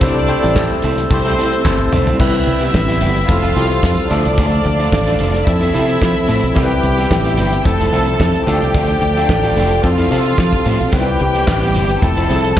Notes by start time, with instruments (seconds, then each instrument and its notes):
Already playing: tonewheel organ C5 G5 A5
0.01 fingered electric bass C2, clean electric guitar G3 C4 E4 A4, tine electric piano A3 C4 E4 G4 C5, string section D4 D5, tonewheel organ E6, kick, closed hi-hat
0.15 muted clean electric guitar stroke
0.28 tine electric piano A3 C4 E4 G4 C5, muted clean electric guitar stroke, closed hi-hat
0.43 fingered electric bass A1, clean electric guitar G3 C4 E4 A4, closed hi-hat
0.56 kick, snare, clap
0.70 muted clean electric guitar stroke, closed hi-hat
0.82 fingered electric bass C2, clean electric guitar G3 C4 E4 A4, closed hi-hat
0.97 muted clean electric guitar stroke, snare, closed hi-hat
1.10 fingered electric bass C2, tine electric piano A3 C4 E4 G4 C5, string section C4 C5, tonewheel organ C5, muted clean electric guitar stroke, kick, closed hi-hat
1.25 clean electric guitar G3 C4 E4 A4
1.38 clean electric guitar G3 C4 E4 A4, closed hi-hat
1.52 muted clean electric guitar stroke, closed hi-hat
1.65 fingered electric bass G1, muted clean electric guitar stroke, kick, snare, clap
1.80 muted clean electric guitar stroke
1.92 fingered electric bass B1, clean electric guitar G3 C4 E4 A4, mid tom
2.07 clean electric guitar G3 C4 E4 A4, floor tom
2.19 fingered electric bass C2, tine electric piano G3 C4 E4 B4, clean electric guitar G3 B3 E4 G4, tonewheel organ C4 G5 B5 E6, string section E4 E5, kick, crash
2.34 muted clean electric guitar stroke, closed hi-hat
2.46 fingered electric bass C2, muted clean electric guitar stroke, closed hi-hat
2.61 clean electric guitar G3 B3 E4 G4, closed hi-hat
2.73 fingered electric bass A1, muted clean electric guitar stroke, kick, snare
2.88 clean electric guitar G3 B3 E4 G4, closed hi-hat
3.01 fingered electric bass G1, clean electric guitar G3 B3 E4 G4, closed hi-hat
3.15 muted clean electric guitar stroke, closed hi-hat
3.28 fingered electric bass F1, tine electric piano F3 C4 E4 A4, string section F4 F5, tonewheel organ F5 A5, muted clean electric guitar stroke, kick, closed hi-hat
3.43 clean electric guitar F3 C4 E4 A4, closed hi-hat
3.55 fingered electric bass C2, tine electric piano F3 C4 F4 G4, clean electric guitar F3 C4 E4 A4, closed hi-hat
3.70 muted clean electric guitar stroke, closed hi-hat
3.83 fingered electric bass F2, muted clean electric guitar stroke, kick, snare
3.98 muted clean electric guitar stroke, closed hi-hat
4.10 fingered electric bass D2, tine electric piano F3 A3 D4 A4, clean electric guitar A3 D4 F4 A4, string section D4 D5, tonewheel organ A4 D5 D6, closed hi-hat
4.25 fingered electric bass C2, muted clean electric guitar stroke, closed hi-hat
4.37 fingered electric bass D2, clean electric guitar A3 D4 F4 A4, kick, closed hi-hat
4.52 muted clean electric guitar stroke, closed hi-hat
4.65 fingered electric bass D2, muted clean electric guitar stroke, closed hi-hat
4.79 clean electric guitar A3 D4 F4 A4, closed hi-hat
4.92 fingered electric bass A1, muted clean electric guitar stroke, kick, snare
5.07 clean electric guitar A3 D4 F4 A4, closed hi-hat
5.19 fingered electric bass F1, clean electric guitar A3 D4 F4 A4, closed hi-hat
5.34 muted clean electric guitar stroke, snare, closed hi-hat
5.46 fingered electric bass F2, tine electric piano F3 C4 E4 A4, tonewheel organ F3 C4 E5 A5, string section E4 E5, muted clean electric guitar stroke, kick, closed hi-hat
5.61 clean electric guitar F3 C4 E4 A4, closed hi-hat
5.73 fingered electric bass C3, clean electric guitar F3 C4 E4 A4, tine electric piano F3 C4 E4 A4, closed hi-hat
5.88 muted clean electric guitar stroke, closed hi-hat
6.02 fingered electric bass F3, kick, snare
6.16 muted clean electric guitar stroke, closed hi-hat
6.28 fingered electric bass A2, clean electric guitar F3 C4 E4 A4, closed hi-hat
6.43 fingered electric bass B1, muted clean electric guitar stroke, closed hi-hat
6.55 fingered electric bass C2, tine electric piano G3 C4 E4 A4, clean electric guitar G3 B3 E4 G4, string section G4 G5, tonewheel organ G4 B5, kick, closed hi-hat
6.63 tine electric piano B4
6.70 muted clean electric guitar stroke, closed hi-hat
6.83 fingered electric bass C2, muted clean electric guitar stroke, closed hi-hat
6.98 clean electric guitar G3 B3 E4 G4, closed hi-hat
7.11 fingered electric bass A1, muted clean electric guitar stroke, kick, snare
7.25 clean electric guitar G3 B3 E4 G4, closed hi-hat
7.38 fingered electric bass G1, clean electric guitar G3 B3 E4 G4, closed hi-hat
7.52 muted clean electric guitar stroke, closed hi-hat
7.64 fingered electric bass F1, tine electric piano F3 C4 E4 A4, tonewheel organ F3 A5, string section A4 A5, muted clean electric guitar stroke, kick, closed hi-hat
7.80 clean electric guitar A3 C4 E4 A4, closed hi-hat
7.92 fingered electric bass C2, tine electric piano F3 C4 E4 A4, clean electric guitar A3 C4 E4 A4, closed hi-hat
8.07 muted clean electric guitar stroke, closed hi-hat
8.20 fingered electric bass F2, muted clean electric guitar stroke, kick, snare
8.35 muted clean electric guitar stroke, closed hi-hat
8.47 fingered electric bass D2, tine electric piano F3 A3 D4 A4, clean electric guitar A3 D4 F4 A4, tonewheel organ F4 A4 D5, string section G4 G5, closed hi-hat
8.62 fingered electric bass C2, muted clean electric guitar stroke, closed hi-hat
8.74 fingered electric bass D2, clean electric guitar A3 D4 F4 A4, kick, closed hi-hat
8.88 muted clean electric guitar stroke, closed hi-hat
9.01 fingered electric bass D2, muted clean electric guitar stroke, closed hi-hat
9.17 clean electric guitar A3 D4 F4 A4, closed hi-hat
9.29 fingered electric bass A1, muted clean electric guitar stroke, kick, snare
9.43 clean electric guitar A3 D4 F4 A4, closed hi-hat
9.56 fingered electric bass F1, clean electric guitar A3 D4 F4 A4, open hi-hat
9.71 muted clean electric guitar stroke, closed hi-hat
9.83 fingered electric bass F2, tine electric piano F3 C4 E4 A4, tonewheel organ C4 A5, string section F4 F5, muted clean electric guitar stroke, kick, closed hi-hat
9.98 clean electric guitar F3 C4 E4 A4, closed hi-hat
10.10 fingered electric bass C3, tine electric piano F3 C4 F4 G4, clean electric guitar F3 C4 E4 A4, closed hi-hat
10.18 tine electric piano A4
10.25 muted clean electric guitar stroke, closed hi-hat
10.38 fingered electric bass F3, kick, snare
10.53 muted clean electric guitar stroke, kick, closed hi-hat
10.65 fingered electric bass A2, clean electric guitar F3 C4 E4 A4, closed hi-hat
10.80 fingered electric bass B1, muted clean electric guitar stroke, closed hi-hat
10.92 fingered electric bass C2, tine electric piano G3 C4 D#4 B4, clean electric guitar G3 B3 E4 G4, string section G4 G5, tonewheel organ G4 B5, kick, closed hi-hat
11.00 tine electric piano E4
11.06 muted clean electric guitar stroke, closed hi-hat
11.19 fingered electric bass C2, muted clean electric guitar stroke, closed hi-hat
11.35 clean electric guitar G3 B3 E4 G4, closed hi-hat
11.47 fingered electric bass A1, muted clean electric guitar stroke, kick, snare, clap
11.61 clean electric guitar G3 B3 E4 G4, closed hi-hat
11.74 fingered electric bass G1, clean electric guitar G3 B3 E4 G4, closed hi-hat
11.89 muted clean electric guitar stroke, closed hi-hat
12.01 fingered electric bass F1, tine electric piano F3 C4 E4 A4, tonewheel organ F3 A5, string section A4 A5, muted clean electric guitar stroke, kick, closed hi-hat
12.17 clean electric guitar F3 C4 E4 A4, closed hi-hat
12.28 fingered electric bass C2, tine electric piano F3 C4 E4 G#4, clean electric guitar F3 C4 E4 A4, closed hi-hat
12.36 tine electric piano A4
12.44 muted clean electric guitar stroke, closed hi-hat
12.57 muted clean electric guitar stroke, kick